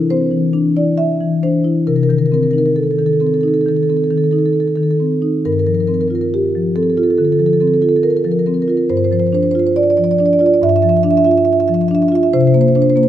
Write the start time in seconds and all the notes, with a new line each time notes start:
Already playing: E4
0.10 C4 C5
0.31 E3
0.53 D4
0.76 E4 D5
0.98 E5
1.20 E3
1.43 D4 C5
1.64 E4
1.87 C3 A#4
1.96 A#4
2.03 A#4
2.09 D#3 A#4
2.18 A#4
2.26 A#4
2.32 C4 A#4
2.43 A#4
2.51 D#4 A#4
2.58 A#4
2.66 A#4
2.76 A4
2.83 A4
2.91 A4
2.98 D#3 A4
3.06 A4
3.13 A4
3.20 C4 A4
3.27 A4
3.34 A4
3.41 D#4 A4
3.48 A4
3.54 A4
3.61 A4
3.66 D#3 A4
3.76 A4
3.83 A4
3.89 C4 A4
3.97 A4
4.04 A4
4.10 D#3 A4
4.18 A4
4.24 A4
4.31 D#4 A4
4.39 A4
4.46 A4
4.53 A4
4.60 A4
4.68 A4
4.76 D#3 A4
4.83 A4
4.91 A4
5.00 C4
5.22 D#4
5.45 G2 A#4
5.52 A#4
5.59 A#4
5.67 F3 A#4
5.74 A#4
5.80 A#4
5.87 C4 A#4
5.94 A#4
6.01 A#4
6.08 F4 A#4
6.15 A#4
6.21 A#4
6.34 G4
6.55 F3
6.76 C4 A4
6.83 A4
6.90 A4
6.97 F4 A4
7.03 A4
7.10 A4
7.18 D3 A4
7.25 A4
7.32 A4
7.39 F3 A4
7.46 A4
7.53 A4
7.60 C4 A4
7.67 A4
7.74 A4
7.82 F4 A4
7.89 A4
7.96 A4
8.03 A#4
8.10 A#4
8.17 A#4
8.24 F3 A#4
8.32 A#4
8.39 A#4
8.46 C4 A#4
8.54 A#4
8.62 A#4
8.68 F4 A#4
8.77 A#4
8.90 G2 C5
8.97 C5
9.04 C5
9.11 F3 C5
9.20 C5
9.27 C5
9.33 D4 C5
9.43 C5
9.51 F4 C5
9.59 C5
9.66 C5
9.76 D5
9.83 D5
9.90 D5
9.97 F3 D5
10.04 D5
10.11 D5
10.18 D4 D5
10.26 D5
10.33 D5
10.39 F4 D5
10.46 D5
10.54 D5
10.62 G2 E5
10.69 E5
10.76 E5
10.82 F3 E5
10.89 E5
10.97 E5
11.03 D4 E5
11.11 E5
11.17 E5
11.24 F4 E5
11.31 E5
11.38 E5
11.45 E5
11.53 E5
11.60 E5
11.68 F3 E5
11.74 E5
11.81 E5
11.88 D4 E5
11.95 E5
12.02 E5
12.08 F4 E5
12.15 E5
12.23 E5
12.33 C3 C5
12.41 C5
12.47 C5
12.54 A#3 C5
12.61 C5
12.68 C5
12.75 D4 C5
12.82 C5
12.90 C5
12.96 A#3 C5
13.03 C5